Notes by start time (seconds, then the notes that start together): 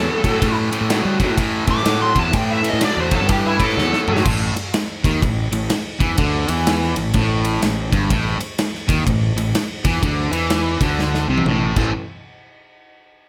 Already playing: A2 F#3 A4
0.24 A2 F#3, kick, ride
0.41 A2 E3, kick, ride
0.71 A2 E3, ride
0.81 A2
0.90 A2 F#3, snare, ride
1.05 G3
1.20 A2 F#3, kick, ride
1.29 A2
1.37 A2 E3, kick, ride
1.67 A2 E3 D6, kick, ride
1.77 snare
1.84 A2 F#3, snare, ride
2.02 C6
2.15 E2 A2 F#3, kick, ride
2.19 A5
2.32 A2 E3 G5, kick, ride
2.51 E5
2.63 A2 E3, ride
2.69 D#5
2.73 A2
2.80 A2 F#3, snare, ride
2.84 D5
2.97 E2 C5
3.10 A2 F#3, kick, ride
3.15 A4
3.21 G2
3.28 A2 E3 G4, kick, ride
3.46 E4
3.59 A2 E3, kick, ride
3.64 A4
3.69 snare
3.76 E2 A2 F#3, snare
3.93 snare
4.07 A2 F#3, mid tom
4.17 snare
4.25 A1 A2, kick, crash
4.56 muted fingered electric bass stroke, muted distorted electric guitar stroke, ride
4.74 snare, ride
5.04 D#2 D#3, kick, snare, ride
5.22 A1 A2, kick, ride
5.52 A1 A2, ride
5.70 snare, ride
6.00 E2 E3, kick, ride
6.18 D2 D3, kick, ride
6.48 E2 E3, ride
6.67 snare, ride
6.82 snare
6.96 A1 A2, ride
7.14 A1 A2, kick, ride
7.45 ride
7.62 A1 A2, snare, ride
7.92 G1 G2, kick, ride
8.10 A1 A2, kick, ride
8.40 muted distorted electric guitar stroke, muted fingered electric bass stroke, ride
8.59 snare, ride
8.75 snare
8.88 D#2 D#3, kick, snare, ride
9.06 A1 A2, kick, ride
9.36 A1 A2, ride
9.55 snare, ride
9.85 E2 E3, kick, ride
10.03 D2 D3, kick, ride
10.32 E2 E3, ride
10.50 snare, ride
10.81 D2 D3, kick, snare, ride
10.99 snare
11.14 snare
11.28 C2 C3
11.38 high tom
11.45 A1 A2, mid tom
11.76 A1 A2 E3 A3 C4 E4 A4, kick, crash